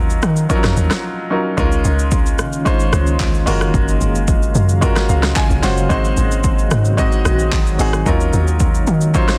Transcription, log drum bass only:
Already playing: D#2
0.23 D#3
0.64 F2
0.77 D#2
1.58 C#2
1.85 C#2
2.39 C#3
2.93 C#2
3.47 F#1
3.74 F#1
4.01 F#1
4.55 F#2
5.09 C#2
5.50 A#1
5.63 F#1
5.90 G#1
6.17 G#1
6.71 G#2
7.25 A#1
7.79 G#1
8.06 D#2
8.33 D#2
8.87 D#3

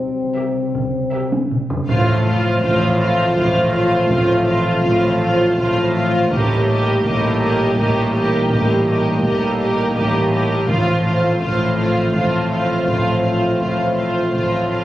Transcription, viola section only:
0.37 G4
1.14 G4
1.90 F4
2.27 F4
2.64 F4
3.00 F4
3.36 F4
3.74 F4
4.11 F4
4.48 F4
4.85 F4
5.21 F4
5.58 F4
5.95 F4
6.32 G4
6.69 G4
7.05 G4
7.41 G4
7.78 G4
8.15 G4
8.51 G4
8.87 G4
9.24 G4
9.60 G4
9.96 G4
10.33 G4
10.69 F4
11.06 F4
11.42 F4
11.77 F4
12.14 F4
12.51 F4
12.88 F4
13.24 F4
13.60 F4
13.97 F4
14.34 F4
14.71 F4

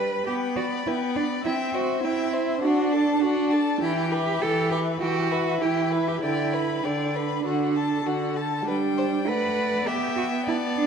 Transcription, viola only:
Already playing: G3
0.27 B3
0.86 B3
1.45 C4
2.03 C4
2.62 D4
3.22 D4
3.81 E3
4.42 E3
5.01 E3
5.61 E3
6.22 D3
6.84 D3
7.44 D3
8.05 D3
8.66 G3
9.27 A3
9.87 B3

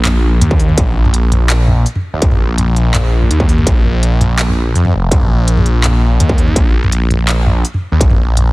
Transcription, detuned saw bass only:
Already playing: A#1
0.41 D#2
0.78 A#1
2.14 D#2
2.22 A#1
3.31 D#2
3.67 A#1
4.75 F2
4.93 F1
5.11 A#1
6.20 D#2
6.56 A#1
7.92 D#2
8.01 A#1

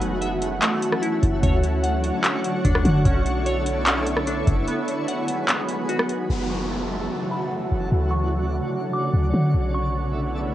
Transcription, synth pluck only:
Already playing: A3
0.21 E5
0.62 A3
1.02 E4
1.43 C#5
1.83 F#5
2.24 C#4
2.65 D4
3.05 C#4
3.46 C#5
3.86 C#4
4.27 D4
4.68 B3
5.08 F#5
5.49 B3
5.89 F#4

